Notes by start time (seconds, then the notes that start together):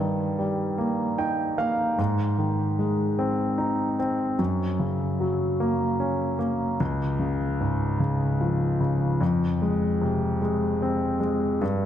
Already playing: G2
0.00 D#3
0.39 G3
0.78 A#3
1.18 D#4 G5
1.58 A#3 F5
1.98 G#2
2.38 D#3
2.79 G#3
3.19 C4
3.58 D#4
3.99 C4
4.39 F#2
4.80 C#3
5.20 F#3
5.60 A#3
6.00 C#4
6.39 A#3
6.80 C#2
7.19 C#3
7.60 G#2
8.00 C#3
8.41 F3
8.80 C#3
9.21 F2
9.62 G#3
10.02 C3
10.42 G#3
10.82 C4
11.20 G#3
11.61 G2